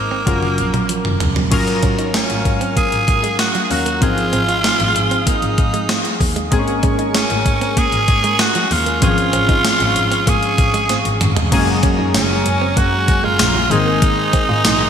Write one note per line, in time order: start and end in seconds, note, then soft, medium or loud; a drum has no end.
0.00 0.19 G#1 medium
0.00 0.23 G#3 medium
0.00 1.21 A#3 medium
0.00 0.24 C4 medium
0.00 0.24 D#4 medium
0.00 0.25 C5 medium
0.11 0.21 C4 medium
0.26 0.50 F#1 loud
0.26 1.49 F#3 medium
0.26 0.36 G#3 medium
0.26 1.49 C#4 medium
0.26 1.50 F4 medium
0.26 1.50 A#4 medium
0.26 kick medium
0.26 closed hi-hat medium
0.26 high tom medium
0.43 muted clean electric guitar stroke soft
0.43 high tom soft
0.58 0.82 A#1 medium
0.58 closed hi-hat medium
0.74 0.83 F#3 medium
0.74 closed hi-hat medium
0.74 mid tom medium
0.89 0.98 F3 medium
0.89 closed hi-hat medium
1.05 1.17 F1 medium
1.05 mid tom medium
1.20 1.33 C#2 medium
1.20 muted clean electric guitar stroke soft
1.20 closed hi-hat medium
1.20 floor tom medium
1.36 1.48 D#2 medium
1.36 1.45 F#3 medium
1.36 floor tom medium
1.51 1.75 G#1 medium
1.51 3.66 F#3 medium
1.51 3.67 C#4 medium
1.51 3.67 F4 medium
1.51 3.99 A#4 medium
1.51 3.67 A#4 medium
1.51 3.99 F5 medium
1.51 3.99 F6 medium
1.51 kick loud
1.51 closed hi-hat medium
1.51 crash medium
1.67 muted clean electric guitar stroke soft
1.67 closed hi-hat soft
1.83 2.07 G#1 medium
1.83 1.92 C#4 medium
1.83 kick medium
1.83 closed hi-hat medium
1.99 2.08 D#4 medium
1.99 closed hi-hat soft
2.14 2.23 C#4 medium
2.14 2.73 C#4 medium
2.14 snare loud
2.14 closed hi-hat medium
2.30 2.45 G#1 medium
2.30 closed hi-hat medium
2.45 2.69 G#2 loud
2.45 muted clean electric guitar stroke soft
2.45 kick medium
2.45 closed hi-hat medium
2.61 2.70 C4 medium
2.61 closed hi-hat soft
2.77 2.86 A#3 medium
2.77 3.36 G#4 loud
2.77 kick medium
2.77 closed hi-hat medium
2.92 3.04 G#1 medium
2.92 muted clean electric guitar stroke soft
2.92 closed hi-hat soft
3.08 3.32 G#2 medium
3.08 kick medium
3.08 closed hi-hat medium
3.23 3.33 G#3 medium
3.23 closed hi-hat medium
3.39 3.62 F#4 medium
3.39 snare loud
3.39 closed hi-hat medium
3.55 3.64 F#3 medium
3.55 closed hi-hat medium
3.64 3.73 G#4 medium
3.70 4.01 D#2 medium
3.70 4.02 F#3 soft
3.70 4.02 C#4 soft
3.70 4.02 F#4 medium
3.70 4.02 A#4 medium
3.70 4.02 F5 soft
3.70 muted clean electric guitar stroke soft
3.70 open hi-hat medium
3.86 3.95 A#3 medium
3.86 closed hi-hat medium
4.01 4.25 G#1 loud
4.01 6.47 F3 medium
4.01 6.48 C4 medium
4.01 6.48 D#4 medium
4.01 5.29 F4 loud
4.01 6.49 G#4 medium
4.01 6.49 F5 medium
4.01 6.49 D#6 medium
4.01 kick loud
4.01 closed hi-hat medium
4.17 muted clean electric guitar stroke soft
4.17 closed hi-hat soft
4.33 4.57 G#1 loud
4.33 4.42 C4 medium
4.33 closed hi-hat medium
4.49 4.58 F4 medium
4.49 closed hi-hat soft
4.64 4.73 D#4 medium
4.64 snare loud
4.64 closed hi-hat medium
4.80 4.92 G#1 loud
4.80 closed hi-hat medium
4.95 5.19 G#2 medium
4.95 muted clean electric guitar stroke soft
4.95 closed hi-hat medium
5.11 5.20 C4 medium
5.11 closed hi-hat soft
5.27 5.36 A#3 medium
5.27 6.21 D#4 medium
5.27 kick medium
5.27 closed hi-hat medium
5.42 5.54 G#1 medium
5.42 muted clean electric guitar stroke soft
5.42 closed hi-hat medium
5.58 5.82 G#2 medium
5.58 kick loud
5.58 closed hi-hat medium
5.74 5.83 G#3 medium
5.74 closed hi-hat medium
5.89 5.98 C4 medium
5.89 snare loud
5.89 closed hi-hat medium
6.05 closed hi-hat medium
6.20 6.44 D#2 medium
6.20 muted clean electric guitar stroke soft
6.20 kick medium
6.20 open hi-hat medium
6.36 6.45 G#3 medium
6.36 closed hi-hat medium
6.51 6.75 G#1 loud
6.51 8.98 G#3 medium
6.51 8.98 A#3 medium
6.51 6.59 C4 medium
6.51 8.99 G#4 medium
6.51 9.00 A#4 medium
6.51 9.00 G#5 medium
6.51 9.00 C#6 medium
6.51 kick loud
6.51 closed hi-hat medium
6.59 9.01 C#4 medium
6.67 muted clean electric guitar stroke soft
6.67 closed hi-hat soft
6.83 7.07 G#1 loud
6.83 6.92 C#4 medium
6.83 kick medium
6.83 closed hi-hat medium
6.99 7.08 D#4 medium
6.99 closed hi-hat medium
7.15 7.24 C#4 medium
7.15 7.80 C#4 medium
7.15 snare loud
7.15 closed hi-hat medium
7.30 7.42 G#1 medium
7.30 closed hi-hat medium
7.46 7.69 G#2 medium
7.46 muted clean electric guitar stroke soft
7.46 kick medium
7.46 closed hi-hat medium
7.61 7.71 C4 medium
7.61 closed hi-hat soft
7.77 7.86 A#3 medium
7.77 8.42 G#4 loud
7.77 kick medium
7.77 closed hi-hat medium
7.92 8.04 G#1 medium
7.92 muted clean electric guitar stroke soft
7.92 closed hi-hat soft
8.08 8.32 G#2 medium
8.08 kick loud
8.08 closed hi-hat medium
8.24 8.33 G#3 medium
8.24 closed hi-hat medium
8.39 8.74 F#4 loud
8.39 snare loud
8.39 closed hi-hat medium
8.55 8.64 F3 medium
8.55 closed hi-hat medium
8.71 8.94 D#2 medium
8.71 9.03 F4 medium
8.71 muted clean electric guitar stroke soft
8.71 open hi-hat medium
8.86 8.96 A#3 medium
8.86 closed hi-hat medium
9.01 9.26 G#1 loud
9.01 9.08 E3 medium
9.01 11.48 C4 medium
9.01 11.48 C#4 medium
9.01 10.30 F4 loud
9.01 11.50 G#4 medium
9.01 11.49 G#4 medium
9.01 11.50 F5 medium
9.01 11.50 C#6 loud
9.01 kick loud
9.01 closed hi-hat medium
9.07 11.51 F3 medium
9.18 muted clean electric guitar stroke soft
9.18 closed hi-hat medium
9.33 9.57 G#1 loud
9.33 9.42 C4 medium
9.33 closed hi-hat medium
9.49 9.58 D#4 medium
9.49 kick medium
9.49 closed hi-hat medium
9.65 9.74 C#4 medium
9.65 snare loud
9.65 closed hi-hat medium
9.65 tambourine medium
9.80 9.92 G#1 medium
9.80 closed hi-hat medium
9.96 10.19 G#2 loud
9.96 muted clean electric guitar stroke soft
9.96 closed hi-hat medium
10.11 10.21 C4 medium
10.11 closed hi-hat medium
10.27 10.58 G#2 loud
10.27 10.36 A#3 medium
10.27 11.22 G#4 loud
10.27 kick medium
10.27 closed hi-hat medium
10.43 muted clean electric guitar stroke soft
10.43 closed hi-hat medium
10.58 10.82 G#1 loud
10.58 kick loud
10.58 closed hi-hat medium
10.74 10.83 G#3 medium
10.74 closed hi-hat medium
10.89 11.01 G#1 soft
10.89 10.99 C4 medium
10.89 snare medium
10.89 closed hi-hat medium
11.05 11.17 G#1 medium
11.05 closed hi-hat medium
11.21 11.44 G#2 loud
11.21 muted clean electric guitar stroke soft
11.21 closed hi-hat medium
11.21 mid tom medium
11.36 11.46 G#3 medium
11.36 closed hi-hat medium
11.36 floor tom medium
11.51 11.76 F#1 loud
11.51 13.66 F#3 medium
11.51 13.67 G#3 medium
11.51 13.67 A#3 medium
11.51 13.67 C#4 medium
11.51 13.69 G#4 medium
11.51 13.68 G#4 medium
11.51 13.69 G#5 medium
11.51 13.69 A#5 loud
11.51 kick loud
11.51 closed hi-hat medium
11.51 crash medium
11.68 muted clean electric guitar stroke soft
11.83 11.92 C#4 medium
11.83 kick loud
11.83 closed hi-hat medium
11.99 12.11 F#2 medium
11.99 12.08 D#4 medium
12.14 12.38 F#1 loud
12.14 12.24 C#4 medium
12.14 12.80 C#4 medium
12.14 snare loud
12.14 closed hi-hat medium
12.14 tambourine medium
12.46 12.76 F#1 medium
12.46 muted clean electric guitar stroke soft
12.46 closed hi-hat medium
12.62 12.71 C4 medium
12.77 13.00 F#2 loud
12.77 12.86 A#3 medium
12.77 13.26 F#4 medium
12.77 kick medium
12.77 closed hi-hat medium
12.93 muted clean electric guitar stroke soft
13.08 kick loud
13.08 closed hi-hat medium
13.24 13.36 F#1 medium
13.24 13.33 G#3 medium
13.24 13.73 F4 loud
13.39 13.63 A#1 loud
13.39 snare loud
13.39 closed hi-hat medium
13.39 tambourine medium
13.55 13.64 F#3 medium
13.70 14.18 G#1 loud
13.70 14.90 D#3 medium
13.70 14.90 G#3 medium
13.70 14.90 A#3 medium
13.70 14.90 C4 medium
13.70 14.90 D#4 loud
13.70 14.90 G#4 medium
13.70 14.90 A#4 medium
13.70 14.90 G#5 medium
13.70 14.90 C6 medium
13.70 muted clean electric guitar stroke soft
13.70 closed hi-hat medium
13.86 13.96 A#3 medium
14.02 kick loud
14.02 closed hi-hat medium
14.18 muted clean electric guitar stroke soft
14.33 14.43 C4 medium
14.33 kick loud
14.33 closed hi-hat medium
14.49 14.61 G#2 loud
14.49 14.58 F4 medium
14.65 14.88 A#1 medium
14.65 14.74 D#4 medium
14.65 snare loud
14.65 closed hi-hat medium
14.65 tambourine medium